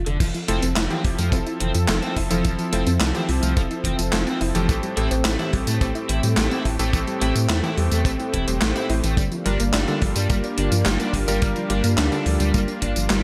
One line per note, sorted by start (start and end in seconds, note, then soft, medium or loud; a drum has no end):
0.06 0.18 F1 medium
0.06 0.17 D3 medium
0.06 0.20 A4 medium
0.06 closed hi-hat medium
0.20 0.32 F1 loud
0.20 0.34 E3 loud
0.20 4.65 F3 medium
0.20 0.25 F3 medium
0.20 9.14 C4 medium
0.20 4.65 A4 medium
0.20 4.65 E5 medium
0.20 kick loud
0.20 closed hi-hat medium
0.20 crash loud
0.20 tambourine soft
0.34 0.44 F3 medium
0.34 closed hi-hat soft
0.34 tambourine soft
0.48 0.60 F1 medium
0.48 0.63 F3 loud
0.48 0.58 A3 medium
0.48 0.59 C4 loud
0.48 0.63 E4 medium
0.48 0.63 F4 medium
0.48 0.63 A4 loud
0.48 closed hi-hat loud
0.62 0.74 F1 medium
0.62 0.76 C4 medium
0.62 closed hi-hat medium
0.62 tambourine medium
0.76 0.88 F1 loud
0.76 0.87 F3 medium
0.76 0.86 E4 loud
0.76 snare loud
0.76 clap loud
0.76 closed hi-hat medium
0.76 tambourine soft
0.90 1.00 E3 loud
0.90 1.29 F3 medium
0.90 1.01 C4 loud
0.90 1.29 E4 medium
0.90 1.29 F4 medium
0.90 1.29 G4 medium
0.90 closed hi-hat soft
0.90 tambourine soft
1.04 1.16 F1 medium
1.04 1.10 F3 medium
1.04 kick loud
1.04 open hi-hat medium
1.18 1.30 F2 medium
1.18 1.29 F3 medium
1.18 1.28 A3 medium
1.18 closed hi-hat medium
1.18 tambourine medium
1.32 1.44 F1 loud
1.32 1.37 F3 medium
1.32 1.85 F3 medium
1.32 1.46 C4 loud
1.32 1.85 E4 medium
1.32 1.85 F4 medium
1.32 1.85 A4 medium
1.32 kick loud
1.32 closed hi-hat medium
1.32 tambourine soft
1.46 1.52 E4 medium
1.46 closed hi-hat soft
1.46 tambourine soft
1.60 1.72 F1 medium
1.60 1.74 E3 medium
1.60 1.71 C4 loud
1.60 closed hi-hat loud
1.75 1.86 F2 medium
1.75 1.88 F3 medium
1.75 closed hi-hat medium
1.75 tambourine medium
1.88 2.00 F1 loud
1.88 1.99 F3 medium
1.88 2.27 F3 medium
1.88 1.98 A3 loud
1.88 2.27 E4 medium
1.88 2.27 F4 medium
1.88 2.27 A4 medium
1.88 snare loud
1.88 clap medium
1.88 closed hi-hat medium
1.88 tambourine soft
2.03 2.12 C4 medium
2.03 2.13 C4 loud
2.03 closed hi-hat soft
2.03 tambourine soft
2.16 2.28 F1 loud
2.16 2.22 E4 medium
2.16 kick medium
2.16 open hi-hat medium
2.31 2.42 F1 medium
2.31 2.40 E3 medium
2.31 2.41 F3 medium
2.31 2.69 F3 loud
2.31 2.69 E4 medium
2.31 2.69 F4 medium
2.31 2.69 A4 loud
2.31 closed hi-hat medium
2.31 tambourine medium
2.45 2.57 F1 loud
2.45 2.58 E3 loud
2.45 2.49 F3 medium
2.45 kick loud
2.45 closed hi-hat medium
2.45 tambourine soft
2.59 2.68 F3 medium
2.59 closed hi-hat soft
2.59 tambourine soft
2.73 2.84 F1 medium
2.73 2.87 F3 medium
2.73 2.82 A3 medium
2.73 2.83 C4 loud
2.73 2.87 E4 medium
2.73 2.87 F4 medium
2.73 2.87 A4 loud
2.73 closed hi-hat loud
2.87 2.98 F2 medium
2.87 3.00 C4 medium
2.87 closed hi-hat medium
2.87 tambourine medium
3.01 3.12 C2 loud
3.01 3.11 F3 medium
3.01 3.10 E4 loud
3.01 snare loud
3.01 clap loud
3.01 closed hi-hat medium
3.01 tambourine soft
3.15 3.24 E3 loud
3.15 3.54 F3 medium
3.15 3.25 C4 loud
3.15 3.54 E4 medium
3.15 3.53 F4 medium
3.15 3.54 G4 medium
3.15 closed hi-hat soft
3.15 tambourine soft
3.29 3.41 C2 medium
3.29 3.34 F3 medium
3.29 open hi-hat medium
3.43 3.55 C2 medium
3.43 3.53 F3 medium
3.43 3.52 A3 medium
3.43 closed hi-hat medium
3.43 tambourine medium
3.57 3.69 F1 loud
3.57 4.10 F3 medium
3.57 3.61 F3 medium
3.57 3.70 C4 loud
3.57 4.10 E4 medium
3.57 4.09 F4 medium
3.57 4.10 A4 medium
3.57 kick loud
3.57 closed hi-hat medium
3.57 tambourine soft
3.71 3.77 E4 medium
3.71 closed hi-hat soft
3.71 tambourine soft
3.84 3.96 F1 medium
3.84 3.98 E3 medium
3.84 3.95 C4 loud
3.84 kick medium
3.84 closed hi-hat loud
3.99 4.11 F1 medium
3.99 4.12 F3 medium
3.99 closed hi-hat medium
3.99 tambourine medium
4.13 4.25 F1 loud
4.13 4.52 F3 medium
4.13 4.23 F3 medium
4.13 4.22 A3 loud
4.13 4.52 E4 medium
4.13 4.52 F4 medium
4.13 4.52 A4 medium
4.13 snare loud
4.13 clap medium
4.13 closed hi-hat medium
4.13 tambourine soft
4.27 4.36 C4 medium
4.27 4.38 C4 loud
4.27 closed hi-hat soft
4.27 tambourine soft
4.41 4.53 F1 loud
4.41 4.47 E4 medium
4.41 open hi-hat medium
4.55 4.67 F1 medium
4.55 4.94 A2 loud
4.55 4.64 E3 medium
4.55 4.66 F3 medium
4.55 4.94 C4 medium
4.55 4.94 G4 medium
4.55 4.94 A4 loud
4.55 closed hi-hat medium
4.55 tambourine medium
4.69 4.81 A1 loud
4.69 4.82 E3 loud
4.69 4.73 A3 medium
4.69 9.14 A3 medium
4.69 9.14 G4 medium
4.69 kick loud
4.69 closed hi-hat medium
4.69 tambourine medium
4.83 4.93 G3 medium
4.83 closed hi-hat soft
4.83 tambourine soft
4.97 5.09 A1 medium
4.97 5.12 A2 loud
4.97 5.06 A3 medium
4.97 5.12 C4 medium
4.97 5.08 E4 loud
4.97 5.12 G4 medium
4.97 5.12 A4 loud
4.97 closed hi-hat loud
5.11 5.23 A1 medium
5.11 5.24 C4 medium
5.11 closed hi-hat medium
5.11 tambourine medium
5.25 5.37 A1 loud
5.25 5.36 A3 medium
5.25 5.35 E4 loud
5.25 snare loud
5.25 clap loud
5.25 closed hi-hat medium
5.25 tambourine medium
5.39 5.78 A2 medium
5.39 5.49 E3 loud
5.39 5.78 C4 medium
5.39 5.50 E4 loud
5.39 5.78 G4 medium
5.39 5.78 A4 loud
5.39 closed hi-hat soft
5.39 tambourine soft
5.53 5.65 A1 medium
5.53 5.59 G3 medium
5.53 kick loud
5.53 open hi-hat medium
5.67 5.79 A2 medium
5.67 5.77 A3 medium
5.67 5.78 A3 medium
5.67 closed hi-hat medium
5.67 tambourine medium
5.81 5.93 A1 loud
5.81 6.34 A2 medium
5.81 5.85 A3 medium
5.81 5.94 C4 loud
5.81 6.34 C4 medium
5.81 6.34 G4 medium
5.81 6.34 A4 medium
5.81 kick loud
5.81 closed hi-hat medium
5.81 tambourine soft
5.95 6.01 E4 medium
5.95 closed hi-hat soft
5.95 tambourine soft
6.09 6.21 A1 medium
6.09 6.22 E3 medium
6.09 6.20 E4 loud
6.09 closed hi-hat loud
6.23 6.35 A2 medium
6.23 6.36 G3 medium
6.23 closed hi-hat medium
6.23 tambourine medium
6.37 6.49 A1 loud
6.37 6.76 A2 medium
6.37 6.47 A3 loud
6.37 6.48 A3 medium
6.37 6.76 C4 medium
6.37 6.76 G4 medium
6.37 6.76 A4 loud
6.37 snare loud
6.37 clap medium
6.37 closed hi-hat medium
6.37 tambourine soft
6.51 6.61 C4 medium
6.51 6.62 E4 loud
6.51 closed hi-hat soft
6.51 tambourine soft
6.65 6.77 A1 medium
6.65 6.71 E4 medium
6.65 kick medium
6.65 open hi-hat medium
6.79 6.91 A1 medium
6.79 7.18 A2 loud
6.79 6.89 E3 medium
6.79 6.90 A3 medium
6.79 7.18 C4 medium
6.79 7.18 G4 medium
6.79 7.18 A4 loud
6.79 closed hi-hat medium
6.79 tambourine medium
6.93 7.05 A1 loud
6.93 7.06 E3 loud
6.93 6.97 A3 medium
6.93 kick loud
6.93 closed hi-hat medium
6.93 tambourine medium
7.07 7.17 G3 medium
7.07 closed hi-hat soft
7.07 tambourine soft
7.21 7.33 A1 medium
7.21 7.36 A2 loud
7.21 7.31 A3 medium
7.21 7.36 C4 medium
7.21 7.32 E4 loud
7.21 7.36 G4 medium
7.21 7.36 A4 loud
7.21 closed hi-hat loud
7.35 7.47 A2 medium
7.35 7.49 C4 medium
7.35 closed hi-hat medium
7.35 tambourine medium
7.49 7.61 E2 loud
7.49 7.60 A3 medium
7.49 7.59 E4 loud
7.49 snare loud
7.49 clap medium
7.49 closed hi-hat medium
7.49 tambourine medium
7.63 8.02 A2 medium
7.63 7.73 E3 loud
7.63 8.02 C4 medium
7.63 7.74 E4 loud
7.63 8.02 G4 medium
7.63 8.02 A4 loud
7.63 closed hi-hat soft
7.63 tambourine soft
7.77 7.89 E2 medium
7.77 7.83 G3 medium
7.77 open hi-hat medium
7.91 8.03 E2 medium
7.91 8.01 A3 medium
7.91 8.02 A3 medium
7.91 closed hi-hat medium
7.91 tambourine medium
8.05 8.17 A1 loud
8.05 8.45 A2 medium
8.05 8.10 A3 medium
8.05 8.19 C4 loud
8.05 8.45 C4 medium
8.05 8.45 G4 medium
8.05 8.45 A4 medium
8.05 kick loud
8.05 closed hi-hat medium
8.05 tambourine medium
8.19 8.25 E4 medium
8.19 closed hi-hat soft
8.19 tambourine soft
8.33 8.45 E1 medium
8.33 8.47 E3 medium
8.33 8.44 E4 loud
8.33 kick medium
8.33 closed hi-hat loud
8.48 8.59 E1 medium
8.48 8.72 A2 medium
8.48 8.61 G3 medium
8.48 8.72 C4 medium
8.48 8.72 G4 medium
8.48 8.72 C5 medium
8.48 closed hi-hat medium
8.48 tambourine medium
8.61 8.73 A1 loud
8.61 8.71 A3 loud
8.61 8.72 A3 medium
8.61 snare loud
8.61 clap medium
8.61 closed hi-hat medium
8.61 tambourine soft
8.76 9.16 A2 medium
8.76 8.85 C4 medium
8.76 9.16 C4 medium
8.76 8.86 E4 loud
8.76 9.16 G4 medium
8.76 9.16 C5 medium
8.76 closed hi-hat soft
8.76 tambourine soft
8.90 9.01 A1 loud
8.90 8.95 E4 medium
8.90 open hi-hat medium
9.04 9.15 A1 medium
9.04 9.13 E3 medium
9.04 9.14 A3 medium
9.04 closed hi-hat medium
9.04 tambourine medium
9.17 9.29 G1 loud
9.17 9.31 D3 loud
9.17 13.23 G3 medium
9.17 9.22 G3 medium
9.17 13.23 A#3 medium
9.17 13.23 D4 medium
9.17 13.23 F4 medium
9.17 kick loud
9.17 closed hi-hat soft
9.17 tambourine soft
9.32 9.41 F3 medium
9.32 closed hi-hat soft
9.32 tambourine soft
9.46 9.57 G1 medium
9.46 9.60 G3 loud
9.46 9.55 G3 medium
9.46 9.56 D4 loud
9.46 9.60 F4 medium
9.46 9.60 G4 medium
9.46 9.60 A#4 loud
9.46 closed hi-hat medium
9.60 9.71 G1 medium
9.60 9.73 A#3 medium
9.60 closed hi-hat soft
9.60 tambourine medium
9.74 9.85 G1 loud
9.74 9.84 G3 medium
9.74 9.83 D4 loud
9.74 snare loud
9.74 clap loud
9.74 closed hi-hat medium
9.74 tambourine medium
9.88 9.97 D3 loud
9.88 10.26 G3 medium
9.88 9.98 D4 loud
9.88 10.26 F4 medium
9.88 10.26 G4 medium
9.88 10.26 A4 loud
9.88 closed hi-hat soft
9.88 tambourine soft
10.02 10.14 G1 medium
10.02 10.07 F3 medium
10.02 kick loud
10.02 open hi-hat medium
10.16 10.28 G2 medium
10.16 10.26 G3 medium
10.16 10.25 G3 medium
10.16 closed hi-hat medium
10.16 tambourine medium
10.30 10.42 G1 loud
10.30 10.82 G3 medium
10.30 10.34 G3 medium
10.30 10.43 A#3 loud
10.30 10.83 F4 medium
10.30 10.82 G4 medium
10.30 10.83 A#4 medium
10.30 kick loud
10.30 closed hi-hat medium
10.30 tambourine soft
10.44 10.50 D4 medium
10.44 closed hi-hat soft
10.44 tambourine soft
10.58 10.70 G1 medium
10.58 10.71 D3 medium
10.58 10.68 D4 loud
10.58 closed hi-hat medium
10.72 10.84 G2 medium
10.72 10.85 F3 medium
10.72 closed hi-hat soft
10.72 tambourine medium
10.86 10.98 G1 loud
10.86 11.25 G3 medium
10.86 10.95 G3 loud
10.86 10.96 G3 medium
10.86 11.25 F4 medium
10.86 11.25 G4 medium
10.86 11.24 A#4 medium
10.86 snare loud
10.86 clap medium
10.86 closed hi-hat soft
10.86 tambourine medium
11.00 11.09 A#3 medium
11.00 11.10 D4 loud
11.00 closed hi-hat soft
11.00 tambourine soft
11.13 11.25 G1 medium
11.13 11.20 D4 medium
11.13 kick medium
11.13 open hi-hat medium
11.28 11.40 G1 medium
11.28 11.37 D3 medium
11.28 11.67 G3 loud
11.28 11.38 G3 medium
11.28 11.67 F4 medium
11.28 11.67 G4 medium
11.28 11.67 A#4 loud
11.28 closed hi-hat soft
11.28 tambourine medium
11.42 11.54 G1 loud
11.42 11.55 D3 loud
11.42 11.46 G3 medium
11.42 kick loud
11.42 closed hi-hat medium
11.42 tambourine medium
11.56 11.65 F3 medium
11.56 closed hi-hat soft
11.56 tambourine soft
11.70 11.82 G1 loud
11.70 11.84 G3 loud
11.70 11.79 G3 medium
11.70 11.80 D4 loud
11.70 11.84 F4 medium
11.70 11.84 G4 medium
11.70 11.84 A#4 loud
11.70 closed hi-hat medium
11.84 11.96 G2 medium
11.84 11.97 A#3 medium
11.84 closed hi-hat medium
11.84 tambourine medium
11.98 12.10 D2 loud
11.98 12.09 G3 medium
11.98 12.07 D4 loud
11.98 snare loud
11.98 clap loud
11.98 closed hi-hat medium
11.98 tambourine medium
12.12 12.21 D3 loud
12.12 12.51 G3 medium
12.12 12.23 D4 loud
12.12 12.51 F4 medium
12.12 12.51 G4 medium
12.12 12.51 A4 medium
12.12 closed hi-hat soft
12.12 tambourine soft
12.26 12.38 D2 medium
12.26 12.32 F3 medium
12.26 open hi-hat medium
12.40 12.52 D2 medium
12.40 12.50 G3 medium
12.40 12.51 G3 medium
12.40 closed hi-hat medium
12.40 tambourine medium
12.54 12.66 G1 loud
12.54 13.07 G3 medium
12.54 12.58 G3 medium
12.54 12.67 A#3 loud
12.54 13.07 F4 medium
12.54 13.07 G4 medium
12.54 13.07 A#4 medium
12.54 kick loud
12.54 closed hi-hat medium
12.54 tambourine medium
12.68 12.74 D4 medium
12.68 closed hi-hat soft
12.68 tambourine soft
12.82 12.94 G1 medium
12.82 12.95 D3 medium
12.82 12.93 D4 loud
12.82 kick medium
12.82 closed hi-hat medium
12.96 13.08 G1 medium
12.96 13.09 F3 medium
12.96 closed hi-hat medium
12.96 tambourine medium
13.10 13.22 G1 loud
13.10 13.20 G3 loud
13.10 13.23 G3 medium
13.10 13.21 G3 medium
13.10 13.23 F4 medium
13.10 13.23 G4 medium
13.10 13.23 A#4 loud
13.10 snare loud
13.10 clap loud
13.10 closed hi-hat soft
13.10 tambourine medium